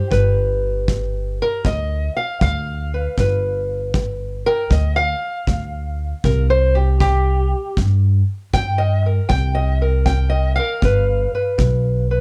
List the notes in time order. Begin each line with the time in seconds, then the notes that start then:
Already playing: G3 G4 C5
0.11 G1 G3 B4, kick
0.88 G3, kick
1.42 A#4
1.65 D2 G3 D#5, kick
2.17 F5
2.41 D2 G3 F5, kick
2.94 B4
3.17 G1 G3 B4, kick
3.94 G3, kick
4.46 A#4 G5
4.70 D2 G3 D#5, kick
4.96 F5
5.47 D2 G3, kick
6.24 C2 C4 A#4, kick
6.50 C5
6.75 G4
7.00 C4 G4, kick
7.77 G2 C4, kick
8.53 G2 C4 G5, kick
8.78 D#5
9.06 A#4
9.29 C2 C4 G5, kick
9.55 D#5
9.82 A#4
10.06 C4 G5, kick
10.30 D#5
10.56 A#4 F5
10.82 G1 G3 B4, kick
11.35 B4
11.58 B1 G3, kick
12.11 B4